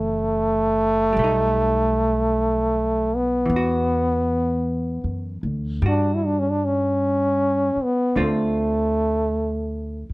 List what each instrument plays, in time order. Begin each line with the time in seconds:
Already playing: upright bass F#1, hollow-body jazz guitar E3 A3 C4, trombone A3
1.13 upright bass B1, hollow-body jazz guitar G3
1.19 hollow-body jazz guitar A3
1.24 hollow-body jazz guitar D#4
3.16 trombone B3
3.46 upright bass E2, hollow-body jazz guitar E3
3.56 hollow-body jazz guitar F#4
5.04 upright bass F#2
5.43 upright bass D2
5.82 upright bass G2, hollow-body jazz guitar G3 F#4
5.88 trombone D4
6.15 trombone E4
6.26 trombone D4
6.39 trombone C#4
6.50 trombone D4
6.65 trombone C#4
7.76 muted upright bass stroke
7.84 trombone B3
8.16 upright bass D2, hollow-body jazz guitar D3 A3 C4 F4
8.24 trombone A3
10.10 muted upright bass stroke